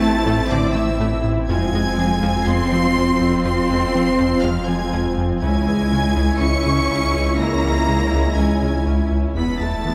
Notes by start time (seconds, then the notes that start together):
Already playing: A1 A3 C4 E4 A5 A6
0.02 A3 E4
0.26 A2 A3
0.50 A2 D3 C4 D5 D6
0.74 E3 A3 E4 E5 E6
1.00 A2 A3
1.24 A2
1.47 F1 F2 F3 G#3 C4 F4 G#5 G#6
1.73 F2 G#3
1.98 F3 C4
2.23 F2 F3
2.46 F2 G#3 C4 C6 C7
2.71 F3 C4
2.96 F2 F3
3.21 F2
3.45 F2 F3 C4 C6 C7
3.70 F2 G#3
3.94 F3 C4
4.18 F2 F3
4.42 F2 F3 G#3 F5 F6
4.66 F3 G#3 C4 G#5 G#6
4.93 F2 F3
5.18 F2
5.40 C#2 C#3 G#3 C#4 E4 G#5 G#6
5.44 G#3 E4
5.67 C#2 E3
5.92 C#3 G#3
6.17 C#2 C#3
6.40 C#2 E3 C#4 C#6 C#7
6.66 C#3 G#3
6.90 C#2 C#3
7.15 C#2
7.39 C#2 C#3 A#3 A#5 A#6
7.64 C#2 E3
7.88 C#3 G#3
8.13 C#2 C#3
8.37 C#2 E3 G#3 G#5 G#6
8.62 C#3 G#3
8.87 C#2 C#3
9.11 C#2
9.35 E1 E2 E3 B3 E4 B5 B6
9.60 E2 G#3 A3 A5 A6
9.85 E3 B3